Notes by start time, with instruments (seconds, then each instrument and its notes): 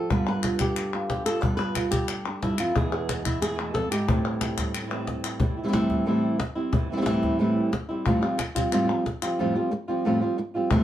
Already playing: nylon-string guitar F3 A4 C5
0.10 nylon-string guitar G2 D3 G3 B3 F4 B4, cajon bass
0.27 nylon-string guitar B4, cajon slap
0.43 nylon-string guitar B3 F4, cajon slap, clap
0.59 nylon-string guitar G4, cajon bass, clap
0.76 muted nylon-string guitar stroke, clap
0.95 nylon-string guitar F4
1.09 nylon-string guitar G3 B3 F4 G4, cajon slap
1.26 nylon-string guitar B3 F4 A4, cajon slap, clap
1.41 nylon-string guitar G2 G3 B3 B4, cajon bass
1.45 nylon-string guitar F4
1.57 nylon-string guitar B4, cajon slap
1.75 nylon-string guitar B3 F4, cajon slap, clap
1.91 nylon-string guitar G4, cajon bass, clap
2.08 muted nylon-string guitar stroke, clap
2.25 nylon-string guitar D4, clap
2.42 nylon-string guitar G2 G3 B3 E4 F4, cajon slap
2.58 nylon-string guitar F2 B3 F4, clap
2.75 nylon-string guitar E2 B2 E3 G#3 B3 E4 G#4, cajon bass
2.92 nylon-string guitar G#4
3.09 nylon-string guitar E3 G#3 B3 E4, cajon slap, clap
3.25 nylon-string guitar E4, cajon bass, clap
3.42 nylon-string guitar B2 E3 G#3 B3 G#4, muted nylon-string guitar stroke, clap
3.46 nylon-string guitar B2 E3 E4
3.50 nylon-string guitar B2 G#3 B3 E4
3.54 nylon-string guitar E3 G#3 B3 E4
3.58 nylon-string guitar E2 B2 E3 G#3 B3 E4
3.74 nylon-string guitar F2 E3 G#3 B3 E4 A4, cajon slap
3.91 nylon-string guitar G#2 E3 G#3 B3 E4 G4, clap
4.08 nylon-string guitar A2 E3 G3 C4 E4, cajon bass
4.41 nylon-string guitar G3 C4 E4, cajon slap, clap
4.58 nylon-string guitar G3, cajon bass, cajon slap, clap
4.74 muted nylon-string guitar stroke, clap
4.82 nylon-string guitar E3 G3 C4 E4
4.86 nylon-string guitar E3 G3 C4 E4
4.90 nylon-string guitar A2 E3 G3 C4 E4
5.07 nylon-string guitar E3 G3 C4 E4, cajon slap
5.23 nylon-string guitar G3 C4 E4, clap
5.40 nylon-string guitar A2 E3 G3 C4 E4, muted nylon-string guitar stroke, cajon bass
5.57 nylon-string guitar G3 C4 E4
5.63 nylon-string guitar E3 G3 C4 E4
5.68 nylon-string guitar E3 G3 C4 E4
5.73 nylon-string guitar A2 E3 G3 C4 E4, muted nylon-string guitar stroke, cajon slap
5.90 nylon-string guitar G3 C4 E4, cajon bass, cajon slap
6.07 nylon-string guitar A2 E3 G3 C4 E4
6.23 nylon-string guitar G3 C4 E4
6.40 muted nylon-string guitar stroke, cajon slap
6.56 nylon-string guitar G3 C4 E4
6.73 nylon-string guitar A2 E3 G3 C4 E4, muted nylon-string guitar stroke, cajon bass
6.89 nylon-string guitar E3 G3 C4 E4
6.97 nylon-string guitar E3 G3 C4 E4
7.01 nylon-string guitar E3 G3 C4 E4
7.06 nylon-string guitar A2 E3 G3 C4 E4, muted nylon-string guitar stroke, cajon slap
7.23 nylon-string guitar G3 C4 E4, cajon bass, cajon slap
7.39 nylon-string guitar A2 E3 G3 C4 E4
7.56 nylon-string guitar G3 C4 E4
7.73 muted nylon-string guitar stroke, cajon slap
7.90 nylon-string guitar G3 C4 E4
8.06 nylon-string guitar F2 A2 F3 G3 C4 F4, cajon bass
8.22 nylon-string guitar F3 G3 C4 F4
8.39 muted nylon-string guitar stroke, cajon slap, clap
8.56 nylon-string guitar F3 G3 C4 F4, cajon bass, clap
8.72 nylon-string guitar F2 A2 F3 G3 C4 F4, clap
8.89 nylon-string guitar F3 G3 C4 F4
9.06 muted nylon-string guitar stroke, cajon slap
9.22 nylon-string guitar F3 G3 C4 F4, cajon slap, clap
9.38 nylon-string guitar F2 A2 F3 G3 C4 F4
9.55 nylon-string guitar F3 G3 C4 F4
9.72 muted nylon-string guitar stroke
9.88 nylon-string guitar F3 G3 C4 F4
10.04 nylon-string guitar F2 A2 F3 G3 C4 F4
10.21 nylon-string guitar F3 G3 C4 F4
10.38 muted nylon-string guitar stroke
10.54 nylon-string guitar F3 G3 C4 F4
10.71 nylon-string guitar A2 E3 G3 C4 E4, cajon bass